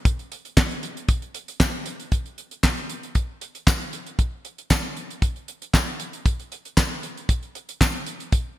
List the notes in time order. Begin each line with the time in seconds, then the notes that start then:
0.05 kick, closed hi-hat
0.19 closed hi-hat
0.32 closed hi-hat
0.45 closed hi-hat
0.57 kick, snare, clap, tambourine
0.71 closed hi-hat
0.83 closed hi-hat
0.97 closed hi-hat
1.08 kick, closed hi-hat
1.22 closed hi-hat
1.34 closed hi-hat
1.48 closed hi-hat
1.60 kick, snare, clap, tambourine
1.86 closed hi-hat
2.00 closed hi-hat
2.12 kick, closed hi-hat
2.26 closed hi-hat
2.38 closed hi-hat
2.51 closed hi-hat
2.63 kick, snare, clap, tambourine
2.77 closed hi-hat
2.89 closed hi-hat
3.03 closed hi-hat
3.15 kick, closed hi-hat
3.41 closed hi-hat
3.55 closed hi-hat
3.67 kick, snare, clap, tambourine
3.80 closed hi-hat
3.93 closed hi-hat
4.06 closed hi-hat
4.19 kick, closed hi-hat
4.45 closed hi-hat
4.58 closed hi-hat
4.70 kick, snare, clap, tambourine
4.96 closed hi-hat
5.10 closed hi-hat
5.22 kick, closed hi-hat
5.36 closed hi-hat
5.48 closed hi-hat
5.62 closed hi-hat
5.74 kick, snare, clap, tambourine
5.87 closed hi-hat
6.00 closed hi-hat
6.13 closed hi-hat
6.26 kick, closed hi-hat
6.39 closed hi-hat
6.52 closed hi-hat
6.65 closed hi-hat
6.77 kick, snare, clap, tambourine
7.03 closed hi-hat
7.17 closed hi-hat
7.29 kick, closed hi-hat
7.43 closed hi-hat
7.55 closed hi-hat
7.69 closed hi-hat
7.81 kick, snare, clap, tambourine
8.06 closed hi-hat
8.20 closed hi-hat
8.32 kick, closed hi-hat